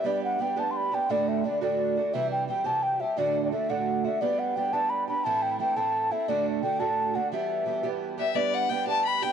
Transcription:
0.04 G3 B3 D4 G4 D5
0.24 F#5
0.39 G3 B3 D4 G4 G5
0.56 G3 B3 D4 G4 A5
0.71 C6
0.77 B5
0.91 B3 D4 G4 G5
1.09 D2 A2 D3 A3 D4 F#4 D5
1.28 E5
1.44 D3 A3 D4 F#4 D5
1.61 D2 A2 D3 A3 D4 F#4 D5
1.96 D3 A3 D4 F#4
2.13 C3 E3 G3 C4 G4 E5
2.31 G5
2.48 E3 G3 C4 G4 G5
2.64 C3 E3 G3 C4 G4 A5
2.83 G5
2.99 G3 C4 G4 E5
3.17 D2 A2 D3 A3 D4 F#4 D5
3.44 D5
3.51 D3 A3 D4 F#4 E5
3.69 D2 A2 D3 A3 D4 F#4 F#5
4.04 D3 A3 D4 F#4 E5
4.21 G3 B3 D4 G4 D5
4.39 F#5
4.56 G3 B3 D4 G4 G5
4.73 G3 B3 D4 G4 A5
4.90 B5
5.08 B3 D4 G4 B5
5.24 A2 E3 A3 C4 E4 A5
5.42 G5
5.59 E3 A3 C4 E4 G5
5.76 A2 E3 A3 C4 E4 A5
6.11 A3 C4 E4 E5
6.28 D2 A2 D3 A3 D4 F#4 D5
6.62 D3 A3 D4 F#4 G5
6.80 D2 A2 D3 A3 D4 F#4 A5
7.14 D3 A3 D4 F#4 F#5
7.32 E3 G3 B3 G4 E5
7.66 E3 G3 B3 G4
7.83 E3 G3 B3 G4
8.18 G3 B3 G4 E5
8.34 G3 B3 D4 G4 D5
8.54 F#5
8.69 G3 B3 D4 G4 G5
8.86 G3 B3 D4 G4 A5
9.05 B5
9.22 B3 D4 G4 G5

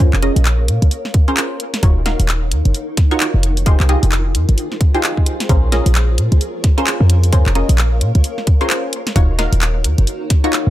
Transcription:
Already playing: A#4 C#5 F5
0.00 C#4 F4 G#4 A#4 C5, kick, closed hi-hat
0.13 F1, clap
0.23 C#4 F4 G#4 A#4 D#5, closed hi-hat
0.36 A#1, closed hi-hat
0.45 clap, closed hi-hat
0.68 A#2, closed hi-hat
0.82 C#2, closed hi-hat
0.91 closed hi-hat
1.05 snare
1.14 kick, closed hi-hat
1.28 C#4 F4 G#4 A#4 C5, closed hi-hat
1.37 clap, closed hi-hat
1.60 D#4, closed hi-hat
1.74 snare, closed hi-hat
1.83 D#1 D#4 F4 F#4 A#4 C#5, kick, closed hi-hat
2.06 D#4 F4 F#4 A#4 F5, snare, closed hi-hat
2.20 D#1, closed hi-hat
2.29 clap, closed hi-hat
2.52 D#2, closed hi-hat
2.65 F#1, closed hi-hat
2.74 closed hi-hat
2.97 kick, snare, closed hi-hat
3.11 D#4 F4 F#4 A#4 C#5, closed hi-hat
3.20 clap, closed hi-hat
3.34 F1
3.43 F4, closed hi-hat
3.57 closed hi-hat
3.66 D#4 F4 G4 G#4 C5, kick, closed hi-hat
3.80 C2, clap
3.89 D#4 F4 G4 G#4 D#5, closed hi-hat
3.97 G#4 C5
4.03 F1, closed hi-hat
4.12 clap, closed hi-hat
4.35 F2, closed hi-hat
4.49 G#1, closed hi-hat
4.58 closed hi-hat
4.72 snare
4.81 kick, closed hi-hat
4.94 D#4 F4 G4 G#4 C5, closed hi-hat
5.04 clap, closed hi-hat
5.17 kick
5.26 closed hi-hat
5.40 snare, closed hi-hat
5.49 A#1 C#4 F4 G#4 A#4 C5, kick, closed hi-hat
5.70 C#4 F4 G#4 A#4 C#5 D#5, snare, closed hi-hat
5.86 A#1, closed hi-hat
5.95 clap, closed hi-hat
6.01 F5
6.18 A#2, closed hi-hat
6.32 C#2, closed hi-hat
6.41 closed hi-hat
6.64 kick, snare, closed hi-hat
6.78 C#4 F4 G#4 A#4 C5, closed hi-hat
6.87 clap, closed hi-hat
7.00 F2
7.10 closed hi-hat
7.24 closed hi-hat
7.33 C#4 F4 G#4 A#4 C5, kick, closed hi-hat
7.46 F1, clap
7.55 C#4 F4 G#4 A#4 D#5, closed hi-hat
7.69 A#1, closed hi-hat
7.78 clap, closed hi-hat
8.01 A#2, closed hi-hat
8.15 C#2, closed hi-hat
8.24 closed hi-hat
8.38 snare
8.47 kick, closed hi-hat
8.61 C#4 F4 G#4 A#4 C5, closed hi-hat
8.70 clap, closed hi-hat
8.93 D#4, closed hi-hat
9.07 snare, closed hi-hat
9.16 D#1 D#4 F4 F#4 A#4 C#5, kick, closed hi-hat
9.28 F#4
9.38 D#4 F4 F#4 A#4 F5, snare, closed hi-hat
9.53 D#1, closed hi-hat
9.62 clap, closed hi-hat
9.84 D#2, closed hi-hat
9.98 F#1, closed hi-hat
10.07 closed hi-hat
10.30 kick, snare, closed hi-hat
10.44 D#4 F4 F#4 A#4 C#5, closed hi-hat
10.53 clap, closed hi-hat

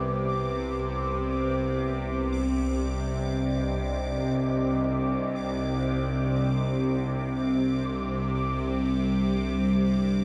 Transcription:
Already playing: C2 C3 C4 G4 B4 D6
1.49 D5
2.34 D#5
7.36 G3
8.93 D4

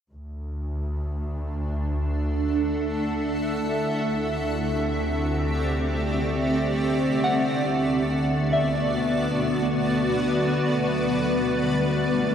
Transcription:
0.13 D2 D3 A3 D4
1.01 A4
1.37 E5
1.71 F#5
3.64 D2 C4
4.03 G4
4.29 D5
7.11 D2 B3
7.24 F#5
7.85 F#4
8.28 B4
8.53 E5
10.60 D2 G3
11.05 D4
12.02 A4

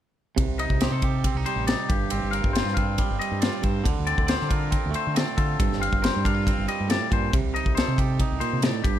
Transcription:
0.36 C2 C3, kick, ride
0.48 C2
0.59 D#4 D#5, ride
0.70 C2, kick
0.81 G4 C5, snare, ride
0.91 C3 A4
1.02 G4, kick, ride
1.24 C4, kick, ride
1.35 C2 D#4
1.46 G3 C5, ride
1.56 A1
1.67 D#4 D5, snare, ride
1.89 G1 G2 G4, kick, ride
2.10 G1 C4, ride
2.23 G1
2.31 A#4 F5, ride
2.44 G1, kick
2.53 F4 C5, snare, ride
2.65 G2, snare
2.74 C4 F5, kick, ride
2.98 G3, kick, ride
3.11 G1
3.19 C4 D#5, ride
3.32 G2
3.40 F4 D5, snare, ride
3.62 G2 C5, kick, ride
3.84 D2 D3, kick, ride
3.99 D2
4.07 C4 D5, ride
4.18 D2, kick
4.27 C5 D5, snare, ride
4.40 D3, snare
4.49 F4 A#4, kick, ride
4.71 C4, kick, ride
4.86 D2
4.90 A3, ride
4.96 C5
5.07 D3
5.14 C4 D5, snare, ride
5.37 D3 F4 A4, kick, ride
5.59 G1 G2, kick, ride
5.72 G1, snare
5.80 C4 F5, ride
5.93 G1, kick
6.02 A#4 C5, snare, ride
6.16 G2
6.25 D4 F5, kick, ride
6.34 F4
6.47 C4, kick, ride
6.58 G1
6.68 G3 D#5, ride
6.80 G2
6.88 A2 D5, snare, ride
7.10 G2 A#2 C5, kick, ride
7.33 C2 C3, kick, ride
7.44 C2
7.55 D#4 D#5, ride
7.66 C2, kick
7.75 A4 C5, snare, ride
7.88 C3
7.98 G4, kick, ride
8.20 D#4, kick, ride
8.32 C2
8.40 A#2 C5, ride
8.53 C3
8.62 A2 D5, snare, ride
8.84 G1 G2 G4, kick, ride

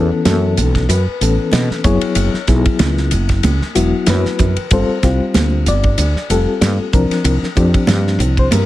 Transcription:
Already playing: E3 B3 C#4 A4
0.11 muted fretless electric bass stroke
0.25 F#2 A4, snare, hi-hat pedal, ride, high conga
0.57 B1, hi-hat pedal, ride, high conga
0.75 kick, snare, ride
0.89 F#2 B4, hi-hat pedal, ride, muted conga
1.07 muted fretless electric bass stroke
1.21 A1 E3 B3 C#4 A4, hi-hat pedal, ride
1.52 B2, snare, hi-hat pedal, ride, high conga
1.70 muted fretless electric bass stroke, snare
1.84 F#1 F#3 B3 E4 G#4 C#5, kick, hi-hat pedal, ride, muted conga
2.01 muted fretless electric bass stroke, ride
2.15 F#1, hi-hat pedal, ride, muted conga
2.34 muted fretless electric bass stroke, snare
2.47 B1 F#3 B3 E4 G#4, kick, snare, hi-hat pedal, ride, muted conga
2.66 kick, ride
2.79 C#2, snare, hi-hat pedal, ride, high conga
2.97 snare
3.11 F#1, hi-hat pedal, ride
3.29 kick, snare, ride
3.43 C#2, hi-hat pedal, ride, muted conga, high conga
3.61 muted fretless electric bass stroke, snare
3.75 E1 F#3 B3 E4 F#4, hi-hat pedal, ride
4.06 F#2 B4, snare, hi-hat pedal, ride, high conga
4.25 muted fretless electric bass stroke, snare
4.39 F#2, kick, hi-hat pedal, ride, muted conga, low conga
4.57 muted fretless electric bass stroke, ride
4.71 G1 G3 C4 F4 A4 C5, kick, hi-hat pedal, ride, muted conga
4.88 muted fretless electric bass stroke
5.03 C2 G3 C4 F4 G4, kick, snare, hi-hat pedal, ride, muted conga
5.20 muted fretless electric bass stroke
5.34 D2, snare, hi-hat pedal, ride, high conga
5.66 G1 D5, hi-hat pedal, ride
5.83 kick, ride
5.98 D2, hi-hat pedal, ride, muted conga
6.15 muted fretless electric bass stroke, snare
6.30 F1 G3 C4 F4 G4 A4, hi-hat pedal, ride
6.61 G2, snare, hi-hat pedal, ride, high conga
6.79 muted fretless electric bass stroke
6.93 C2 F3 C4 D4 A#4, kick, hi-hat pedal, ride, muted conga
7.10 muted fretless electric bass stroke, snare, ride
7.24 C2, hi-hat pedal, ride, muted conga
7.42 muted fretless electric bass stroke, snare
7.56 F2 F3 C4 D4 G4, kick, hi-hat pedal, ride, muted conga
7.74 kick, ride
7.87 G2, snare, hi-hat pedal, ride, high conga
8.07 snare
8.19 C2, hi-hat pedal, ride
8.37 C5, kick, ride
8.51 G2 A#4, hi-hat pedal, ride, muted conga, high conga

